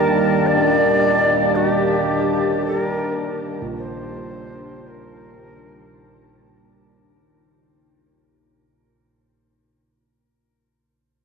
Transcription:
Already playing: D#2 D#3 G3 D4 G4 A#4 A5
0.47 D5
0.57 A#3
1.55 F#4
1.70 G4
2.66 A4
2.82 A#4
3.62 A#2
3.77 C5
4.89 A#4

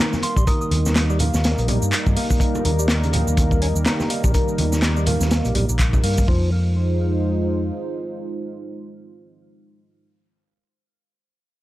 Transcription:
Already playing: G3 A#3 D#4 A#4
0.00 D#3, snare
0.13 snare, high conga, shaker
0.23 A#3 C6, closed hi-hat, open hi-hat
0.36 A#1 G3 C6, kick, shaker
0.47 D#3 D#6, kick, closed hi-hat, muted conga, shaker
0.61 D#6, shaker
0.71 D#2, closed hi-hat, open hi-hat, high conga
0.86 snare, muted conga, shaker
0.96 snare, clap, closed hi-hat, shaker
1.10 G3, shaker
1.19 A#3, closed hi-hat, open hi-hat, low conga
1.34 D#2, snare, muted conga, high conga, shaker
1.44 snare, closed hi-hat, shaker
1.58 A#1, closed hi-hat, shaker
1.68 G3, closed hi-hat, open hi-hat, muted conga, low conga
1.82 G2, shaker
1.93 clap, closed hi-hat, shaker
2.06 G2, kick, high conga, shaker
2.17 A#3, open hi-hat, muted conga
2.31 kick, shaker
2.40 kick, closed hi-hat, shaker
2.55 muted conga, shaker
2.65 D#2 D#3, closed hi-hat, open hi-hat, high conga
2.79 G3, shaker
2.88 snare, clap, closed hi-hat, shaker
3.03 C#3, closed hi-hat, muted conga, shaker
3.13 A#3, closed hi-hat, open hi-hat, low conga
3.27 D#2, high conga, shaker
3.37 kick, closed hi-hat, muted conga, shaker
3.51 kick, shaker
3.62 C#4, closed hi-hat, open hi-hat
3.76 D#2, shaker
3.86 D#3, snare, clap, closed hi-hat, muted conga, shaker
4.00 snare, high conga, shaker
4.10 A#3, closed hi-hat, open hi-hat
4.24 A#1 G3, kick, muted conga, shaker
4.34 D#3, kick, closed hi-hat, shaker
4.48 shaker
4.58 D#2, closed hi-hat, open hi-hat, high conga
4.72 snare, muted conga, shaker
4.82 snare, clap, closed hi-hat, shaker
4.96 G3, shaker
5.06 A#3, closed hi-hat, open hi-hat, muted conga, low conga
5.21 D#2, snare, high conga, shaker
5.31 snare, closed hi-hat, shaker
5.45 A#1, closed hi-hat, shaker
5.55 A#1 G3, closed hi-hat, open hi-hat, muted conga, low conga
5.69 A#1, shaker
5.79 kick, clap, closed hi-hat, shaker
5.93 kick, muted conga, high conga, shaker
6.04 G2 A#3, open hi-hat
6.18 kick, shaker
6.28 F2 F3 G#3 D#4 F4 C5, kick

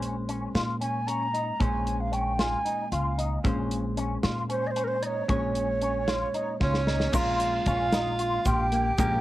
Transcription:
Already playing: A#1 A#2 G#3 C#4 C5
0.02 closed hi-hat
0.29 C#4, closed hi-hat
0.55 A#2 F4, snare, closed hi-hat
0.81 C#4 G#5, closed hi-hat
1.07 C#4 A#5, closed hi-hat
1.34 D#4, closed hi-hat
1.60 A#1 A#2 G#3 C#4 C5 G#5, kick, closed hi-hat
1.87 closed hi-hat
2.00 F5
2.12 C#4 G5, closed hi-hat
2.39 F4 G#5, snare, closed hi-hat
2.65 D#4, closed hi-hat
2.92 C#2 F4 F5, closed hi-hat
3.18 D#4, closed hi-hat
3.44 A#1 A#2 G#3 C#4 C5, kick, closed hi-hat
3.71 closed hi-hat
3.97 C#4, closed hi-hat
4.23 A#2 F4, snare, closed hi-hat
4.49 C#4 C5, closed hi-hat
4.67 C5 D#5
4.76 C#4, closed hi-hat
4.84 A#4 C5
5.02 D#4 C#5 D#5, closed hi-hat
5.28 A#1 A#2 G#3 C#4 C#5, kick, closed hi-hat
5.55 closed hi-hat
5.82 C#4, closed hi-hat
6.08 F4, snare, closed hi-hat
6.34 D#4, closed hi-hat
6.60 C#2 C#4 F4 C#5, kick, snare
6.74 snare
6.87 D#4, snare
7.00 snare
7.12 A#1 A#2 G#3 C#4 F4 A#4 F5, kick, crash, shaker
7.40 closed hi-hat
7.66 A#1 C#4 F4 F5, kick, closed hi-hat, shaker
7.92 D#4, snare, closed hi-hat, shaker
8.19 F4, closed hi-hat
8.45 A#1 F4 G4 G5, kick, closed hi-hat, shaker
8.72 A#3, closed hi-hat
8.98 A#1 A#2 G#3 A#3 C#4 G4 A#4 G5, kick, closed hi-hat, shaker

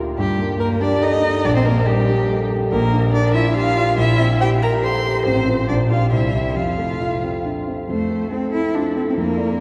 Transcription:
Already playing: D2 A#3 F4 G4 A#4
0.16 G2 G3 G4
0.39 A#3
0.59 A#3 A#4
0.81 D4 G4 D5
1.02 D#4 A4 D#5
1.45 A#1 D4 D5
1.56 C4 C5
1.66 A#3 D4 A#4
1.86 G3 G4 A#4
2.08 G4
2.30 A4
2.51 G4
2.71 A#1 A#3 A#4
2.93 D4
3.13 D4 A#4 D5
3.34 E4 F4 E5
3.56 F4 G4 F5
3.76 F4
3.97 A#1 E4 E5
4.19 C4
4.40 G4 C5 G5
4.62 G4 A#4 A#5
4.83 A4 C5 C6
5.05 G4
5.26 A1 C4 C5
5.47 F4 C5
5.68 A#1 D4 D5
5.89 F4 G4 F5
6.12 C2 E4 E5
6.34 C4 G4
6.56 F2 F4 F5
6.78 A3
7.01 F4
7.23 C4
7.45 D4
7.67 C4
7.89 F2 A3 C5
8.11 A4
8.31 C4 A4
8.53 E4 A4
8.74 D4 F4
8.96 C4 A4
9.10 C4
9.17 F2 A#3 A#4
9.38 D5

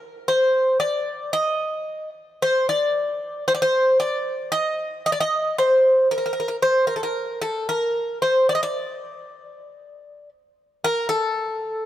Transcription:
0.28 C5
0.80 D5
1.33 D#5
2.42 C5
2.69 D5
3.48 C5
3.55 D5
3.62 C5
4.00 D5
4.52 D#5
5.06 D#5
5.12 D5
5.20 D#5
5.58 C5
6.11 A#4
6.18 A#4
6.26 A#4
6.33 A#4
6.40 A#4
6.48 A#4
6.62 C5
6.87 A#4
6.96 A4
7.03 A#4
7.42 A4
7.69 A#4
8.22 C5
8.49 D5
8.55 D#5
8.63 D5
10.84 A#4
11.09 A4

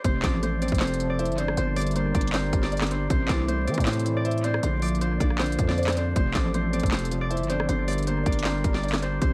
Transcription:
Already playing: D5
0.04 F1 C3 F3 C4 A4 C5, kick, closed hi-hat
0.23 A1 F3 D5, kick, snare, clap, closed hi-hat
0.43 A3 C5, closed hi-hat
0.62 C4 D5, closed hi-hat
0.68 F1, kick, closed hi-hat
0.74 closed hi-hat
0.80 C3 C5, snare, clap, closed hi-hat
0.87 closed hi-hat
0.94 closed hi-hat
1.00 F3, closed hi-hat
1.10 D5
1.19 C5 E5, closed hi-hat
1.25 G1, closed hi-hat
1.32 closed hi-hat
1.38 C4 C5 D5, closed hi-hat
1.48 cross-stick
1.57 G1 D3 G3 D4 A#4 C5, closed hi-hat
1.76 G3 D5, closed hi-hat, open hi-hat
1.81 closed hi-hat
1.87 closed hi-hat
1.91 closed hi-hat
1.95 A#3 C5, closed hi-hat
2.15 G1 D4 D5, kick, closed hi-hat
2.21 closed hi-hat
2.27 closed hi-hat
2.33 D3 C5, snare, clap, closed hi-hat
2.53 G1 G3, kick, closed hi-hat
2.63 D5, snare
2.72 D5, closed hi-hat
2.77 closed hi-hat
2.81 cross-stick, snare, clap, closed hi-hat
2.87 closed hi-hat
2.91 D4 C5, closed hi-hat
3.10 A1 C3 A3 E4 C5, kick, closed hi-hat
3.28 C2 E3 D5, kick, snare, clap, closed hi-hat
3.48 A3 C5, closed hi-hat
3.67 E3 C4 D5, closed hi-hat
3.74 A2, kick, closed hi-hat
3.80 closed hi-hat
3.86 C3 C5, snare, clap, closed hi-hat
3.93 closed hi-hat
3.99 closed hi-hat
4.06 E3, closed hi-hat
4.17 D5
4.25 C5 E5, closed hi-hat
4.31 closed hi-hat
4.38 closed hi-hat
4.44 C4 C5 D5, closed hi-hat
4.54 cross-stick
4.63 A#1 D3 A#3 F4 C5 D5, closed hi-hat
4.82 F3 D5, closed hi-hat, open hi-hat
4.89 closed hi-hat
4.95 closed hi-hat
5.01 A#3 C5, closed hi-hat
5.20 A#1 D4 D5, kick, closed hi-hat
5.30 cross-stick
5.39 D3 C5, snare, clap, closed hi-hat
5.46 closed hi-hat
5.52 closed hi-hat
5.59 F2 F3, kick, closed hi-hat
5.68 D5, snare
5.78 C5 D5, closed hi-hat
5.83 closed hi-hat
5.87 cross-stick, snare, clap, closed hi-hat
5.92 closed hi-hat
5.97 D4 C5 D5, closed hi-hat
6.16 F1 C3 F3 C4 A4 C5, kick, closed hi-hat
6.34 A1 F3 D5, kick, snare, clap, closed hi-hat
6.54 A3 C5, closed hi-hat
6.73 C4 D5, closed hi-hat
6.80 F1, kick, closed hi-hat
6.86 closed hi-hat
6.92 C3 C5, snare, clap, closed hi-hat
6.99 closed hi-hat
7.05 closed hi-hat
7.11 F3, closed hi-hat
7.21 D5
7.30 C5 E5, closed hi-hat
7.37 G1, closed hi-hat
7.43 closed hi-hat
7.49 C4 C5 D5, closed hi-hat
7.60 cross-stick
7.69 G1 D3 G3 D4 A#4 C5, closed hi-hat
7.88 G3 D5, closed hi-hat, open hi-hat
7.93 closed hi-hat
7.98 closed hi-hat
8.03 closed hi-hat
8.07 A#3 C5, closed hi-hat
8.26 G1 D4 D5, kick, closed hi-hat
8.32 closed hi-hat
8.39 closed hi-hat
8.44 D3 C5, snare, clap, closed hi-hat
8.64 G1 G3, kick, closed hi-hat
8.74 D5, snare
8.83 D5, closed hi-hat
8.88 closed hi-hat
8.93 cross-stick, snare, clap, closed hi-hat
8.98 closed hi-hat
9.02 D4 C5, closed hi-hat
9.22 A1 C3 A3 E4 C5, kick, closed hi-hat

